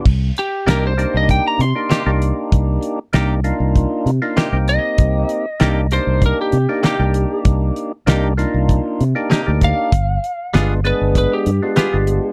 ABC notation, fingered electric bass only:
X:1
M:4/4
L:1/16
Q:1/4=97
K:Cm
V:1 name="Fingered electric bass" clef=bass
C,,2 z2 C,,3 C,,2 z C, z2 C,,2 z | C,,2 z2 C,,3 C,,2 z C, z2 C,,2 z | C,,2 z2 C,,3 C,,2 z C, z2 C,,2 z | C,,2 z2 C,,3 C,,2 z C, z2 D,,2 z |
G,,,2 z2 G,,,3 G,,,2 z G,, z2 G,,,2 z |]